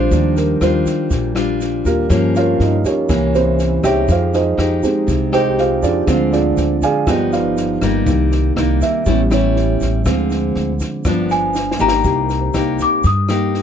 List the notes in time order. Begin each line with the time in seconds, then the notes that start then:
Already playing: G3 G#3 C4 D4 F4 G#4 C5
0.11 D#2 D#3 F3 G3 D4, kick, snare, shaker
0.36 A#4, snare, shaker
0.61 D#2 G3 D4 F4 C5, cross-stick, snare, shaker
0.86 kick, snare, shaker
1.11 A#1 A#2, kick, snare, shaker
1.35 G3 D4 F4, cross-stick, snare, shaker
1.61 snare, shaker
1.85 D#2 A#3 F4 G4 A#4, kick, snare, shaker
2.10 G2 F3 A#3 C#4, kick, cross-stick, snare, shaker
2.35 F4 A#4 C#5 F5, snare, shaker
2.60 G2 D#4 D#5, snare
2.85 C#4 G4 A#4 C#5, kick, snare, shaker
3.09 C2 C3 E3 A#3 C#4, kick, cross-stick, snare, shaker
3.34 C4 E4 G4 C5, snare, shaker
3.59 snare, shaker
3.83 C2 G#3 D#4 G4 C#5 E5 G5, kick, cross-stick, snare, shaker
4.08 F2 F3 F4 G#4 C5 F5, kick, snare, shaker
4.34 D#4 G#4 C5 D#5, snare, shaker
4.57 F2 G#3 D#4 G4, cross-stick, snare
4.83 G#3 C4 D#4 G4 G#4 C5, kick, snare, shaker
5.07 C2 C3, kick, snare, shaker
5.32 G#3 D#4 G4 C5 D#5 G5, cross-stick, snare, shaker
5.58 F4 G#4 C5 F5, snare
5.83 F2 D4 F4 G#4 D5, kick, snare, shaker
6.06 D2 D3 F3 G#3 C4 F4, kick, cross-stick, snare, shaker
6.32 D4 F4 G#4 D5, snare, shaker
6.57 D2, snare, shaker
6.82 G#4 D5 F5 G#5, kick, snare, shaker
7.06 G1 G2 F3 B3 D#4 G4 D5 D#5 G5, kick, cross-stick, snare, shaker
7.32 F4 B4 D5 F5, snare, shaker
7.57 snare, shaker
7.82 G1 G3 A#3 D#4, kick, cross-stick, snare, shaker
8.06 C2 C3 D#3 A#3, kick, snare, shaker
8.32 snare, shaker
8.56 C2 G3 A#3 D#4, cross-stick, snare
8.81 E5, kick, snare, shaker
9.06 A1 A2 G3 B3 C#4 E4, kick, snare, shaker
9.31 G3 C#4 E4 C#5, cross-stick, snare, shaker
9.56 snare
9.81 A1, kick, snare, shaker
10.05 D2 D3 F3 G#3 C4 F4, kick, cross-stick, snare, shaker
10.30 snare, shaker
10.55 D2, snare
10.80 kick, snare, shaker
11.05 G1 G2 F3 B3 D4, kick, cross-stick, snare, shaker
11.29 G#5, snare, shaker
11.54 snare, shaker
11.71 snare
11.79 G1 A#3 D#4 G4 A#5, shaker
11.88 snare
12.04 C2 C3 G4, kick, snare, shaker
12.22 A#4
12.29 snare, shaker
12.41 C5
12.54 C2 A#3 D#4 G4, cross-stick, snare, shaker
12.79 D6, kick, snare, shaker
13.03 G2 D#6, kick, snare, shaker
13.29 A#3 D#4 G4, cross-stick, snare, shaker
13.54 snare